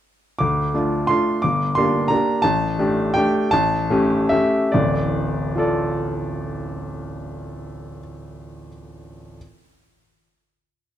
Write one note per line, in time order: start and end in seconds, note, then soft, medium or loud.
0.39 0.74 D2 soft
0.39 1.08 D6 medium
0.74 1.06 A3 soft
0.74 1.06 D4 soft
0.74 1.06 F4 soft
1.07 1.40 A3 soft
1.07 1.40 D4 soft
1.07 1.41 F4 soft
1.07 1.42 C6 medium
1.42 1.76 G1 soft
1.42 1.76 D6 medium
1.75 2.08 A#3 soft
1.75 2.08 D4 soft
1.75 2.08 G4 soft
1.75 2.10 C6 medium
2.08 2.41 A#3 soft
2.08 2.41 D4 soft
2.08 2.42 G4 soft
2.08 2.43 A#5 medium
2.42 2.78 A1 medium
2.42 3.15 A5 medium
2.79 3.12 A3 soft
2.79 3.13 D4 soft
2.79 3.13 G4 medium
3.14 3.49 A3 soft
3.14 3.50 D4 soft
3.14 3.50 G4 medium
3.14 3.52 G5 medium
3.51 3.89 A1 medium
3.51 4.30 A5 medium
3.90 4.27 A3 medium
3.90 4.27 C#4 medium
3.90 4.28 G4 medium
4.29 4.70 A3 soft
4.29 4.70 C#4 soft
4.29 4.70 G4 soft
4.29 4.73 E5 medium
4.72 7.99 D1 medium
4.72 7.99 A1 medium
4.72 5.58 D5 medium
5.56 8.66 F4 soft
5.56 8.68 A4 soft
5.56 8.68 D5 soft